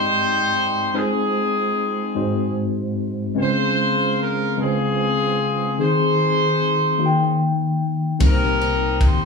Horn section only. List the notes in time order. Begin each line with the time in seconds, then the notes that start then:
Already playing: D#4 G4 C5
0.95 C4 D#4 G#4
3.38 F4 G#4 C5
4.20 A#4
4.59 C4 F4 G#4
5.80 D#4 G#4 C5
8.23 D#4 G4 A#4
9.04 C5